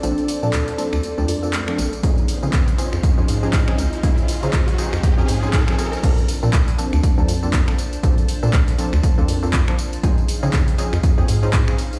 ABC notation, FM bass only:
X:1
M:4/4
L:1/16
Q:"Swing 16ths" 1/4=120
K:Bb
V:1 name="FM bass" clef=bass
B,,, z2 B,, D,, z2 D,, z D,, F,,3 z B,,, z | _D,, z2 _D, F,, z2 F,, z F,, _A,,3 z D,, z | _D,, z2 _D, F,, z2 F,, z F,, _A,,3 z3 | B,,, z2 B,, D,, z2 D,, z D,, F,,3 z3 |
B,,, z2 B,, D,, z2 D,, z D,, F,,3 z3 | _D,, z2 _D, F,, z2 F,, z F,, _A,,3 z3 |]